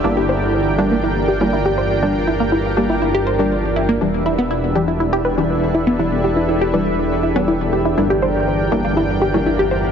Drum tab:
RD |--------x---x---|----x-----x-xx--|x-x-x---x-x-x-xx|x-x-x---x-x-x-xx|
SD |-o-o---------o--|-----o---o--oooo|-o-o---------o--|-----o---o------|

RD |x-x-x---x-x-x-x-|
SD |-o-o---------o--|